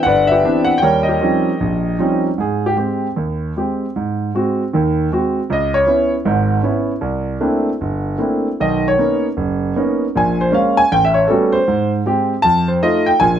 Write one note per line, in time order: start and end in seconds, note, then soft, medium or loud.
0.00 0.26 E5 medium
0.00 0.31 F#5 medium
0.06 0.39 G1 medium
0.06 0.30 B4 medium
0.06 0.79 D5 medium
0.27 0.69 E5 medium
0.32 0.79 G4 medium
0.32 0.79 B4 medium
0.44 0.71 E3 medium
0.44 0.71 B3 medium
0.44 0.71 C4 soft
0.44 0.72 D4 medium
0.65 0.81 F#5 medium
0.78 1.07 G5 medium
0.82 1.16 D#2 medium
0.82 1.16 G3 medium
0.82 1.08 A#4 medium
0.82 1.56 C#5 medium
1.03 2.20 D#5 medium
1.09 2.23 G4 medium
1.09 2.23 A#4 medium
1.21 1.49 F3 medium
1.21 1.49 G3 medium
1.21 1.48 C4 soft
1.21 1.49 C#4 soft
1.21 1.49 D#4 medium
1.60 1.95 A#1 medium
1.99 2.27 F3 medium
1.99 2.28 G3 soft
1.99 2.28 C4 soft
1.99 2.28 C#4 soft
1.99 2.28 D#4 medium
2.38 2.73 G#2 medium
2.38 2.66 G#4 medium
2.66 2.76 G4 medium
2.77 3.05 G#3 soft
2.77 3.06 C4 soft
2.77 3.06 G4 soft
3.16 3.51 D#2 medium
3.57 3.84 G#3 soft
3.57 3.85 C4 soft
3.57 3.85 G4 soft
3.96 4.29 G#2 medium
4.35 4.62 G#3 medium
4.35 4.62 C4 soft
4.35 4.62 F#4 medium
4.73 5.07 D#2 medium
4.73 5.07 D#3 medium
5.12 5.39 G#3 soft
5.12 5.39 C4 soft
5.12 5.39 F#4 medium
5.50 5.83 C#2 medium
5.50 5.76 D#5 medium
5.74 6.10 C#5 medium
5.87 6.14 B3 medium
5.87 6.14 C#4 soft
5.87 6.14 E4 medium
6.25 6.59 G#1 medium
6.25 6.59 G#2 medium
6.63 6.91 B3 medium
6.63 6.90 C#4 soft
6.63 6.91 E4 medium
7.01 7.35 C2 medium
7.41 7.68 A3 medium
7.41 7.68 A#3 soft
7.41 7.68 C4 soft
7.41 7.68 D4 soft
7.41 7.69 E4 medium
7.81 8.15 G1 medium
8.18 8.47 A3 soft
8.18 8.47 A#3 soft
8.18 8.47 C4 soft
8.18 8.47 D4 soft
8.18 8.47 E4 soft
8.60 8.94 B1 medium
8.60 8.94 D#3 medium
8.60 8.86 D#5 medium
8.88 9.23 C#5 medium
8.98 9.26 A#3 soft
8.98 9.26 B3 soft
8.98 9.27 C#4 soft
8.98 9.26 D#4 medium
9.37 9.71 F#1 medium
9.76 10.04 A#3 medium
9.76 10.04 B3 soft
9.76 10.04 C#4 soft
9.76 10.04 D#4 medium
10.15 10.49 A#1 medium
10.15 10.49 A#2 medium
10.15 10.41 G#5 medium
10.41 10.53 C5 medium
10.52 10.80 G#3 medium
10.52 10.79 A#3 soft
10.52 10.80 C#4 medium
10.52 10.79 F5 medium
10.77 10.91 G#5 loud
10.92 11.25 A1 medium
10.92 11.04 G5 medium
11.05 11.17 E5 medium
11.14 11.28 C#5 medium
11.28 11.57 G3 medium
11.28 11.57 A3 soft
11.28 11.57 B3 soft
11.28 11.57 C#4 medium
11.28 11.57 F#4 medium
11.28 11.54 A4 medium
11.52 11.89 C5 medium
11.68 12.01 G#2 medium
12.06 12.33 G#3 medium
12.06 12.33 C4 soft
12.06 12.33 G4 medium
12.42 12.78 F2 medium
12.42 12.68 A5 loud
12.68 12.82 C5 medium
12.83 13.10 A3 medium
12.83 13.10 D#4 medium
12.83 13.10 F4 medium
12.83 13.08 D#5 medium
13.06 13.20 G5 medium
13.20 13.39 A#1 medium
13.20 13.39 A#2 medium
13.20 13.39 G#5 medium